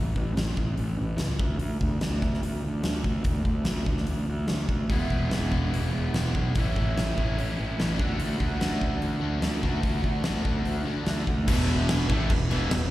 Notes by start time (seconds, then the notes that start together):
Already playing: A1
0.16 A1, kick
0.36 A1, snare, open hi-hat
0.57 A1, kick
0.78 A1, open hi-hat
1.00 A1
1.18 C#2, snare, open hi-hat
1.39 D2, kick
1.59 D2, open hi-hat
1.81 D2, kick
2.01 D2, snare, open hi-hat
2.22 kick, snare
2.34 snare
2.43 D2, open hi-hat
2.66 D2
2.83 D2, snare, open hi-hat
3.04 D2, kick
3.24 D2, kick, open hi-hat
3.45 D2, kick
3.65 D2, snare, open hi-hat
3.86 D2, kick
3.97 snare
4.07 D2, open hi-hat
4.29 D2
4.48 D2, snare, open hi-hat
4.69 D2, kick
4.90 E1 E2 B2 E3 G#3 B3 E4, kick, open hi-hat
5.10 E1, kick
5.31 E1, snare, open hi-hat
5.52 E3 G#3 B3 E4, kick
5.74 E1, open hi-hat
5.95 E1
6.14 E1 E3 G#3 B3 E4, snare, open hi-hat
6.35 B1, kick
6.55 A1 A2 E3 A3 C#4, kick, open hi-hat
6.59 E4
6.76 A1, kick
6.97 A1, snare, open hi-hat
7.18 A1 A2 E3 A3 C#4 E4, kick
7.39 A1, open hi-hat
7.60 A1
7.78 A1 A2 E3 A3 C#4 E4, snare, open hi-hat
7.99 D2 D3 A3 D4 F#4, kick
8.18 D2, open hi-hat
8.40 D2, kick
8.61 D2 D3 A3 D4 F#4, snare, open hi-hat
8.81 kick
9.01 D2, open hi-hat
9.21 D2 D3 A3 D4 F#4
9.42 D2, snare, open hi-hat
9.62 D2 D3 A3 D4 F#4, kick
9.83 D2, kick, open hi-hat
10.04 D2, kick
10.24 D2 D3 A3 D4 F#4, snare, open hi-hat
10.45 D2, kick
10.65 D2, open hi-hat
10.85 D2 D3 A3 D4 F#4
11.06 D2, snare, open hi-hat
11.27 D2, kick
11.48 E1 E2 B2 E3, kick, crash
11.68 crash
11.89 snare, crash
12.09 A1 A2 E3 A3, kick, crash
12.30 E1 E2 B2, kick, crash
12.49 E1 E2 B2 E3, crash
12.70 E1 E2 B2, snare, crash